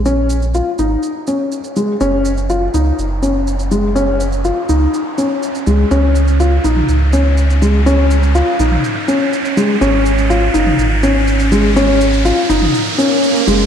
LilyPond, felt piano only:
\new Staff \with { instrumentName = "Felt piano" } { \time 4/4 \key ges \lydian \tempo 4 = 123 des'4 f'8 ees'4 des'4 aes8 | des'4 f'8 ees'4 des'4 aes8 | des'4 f'8 ees'4 des'4 aes8 | des'4 f'8 ees'4 des'4 aes8 |
des'4 f'8 ees'4 des'4 aes8 | des'4 f'8 ees'4 des'4 aes8 | des'4 f'8 ees'4 des'4 aes8 | }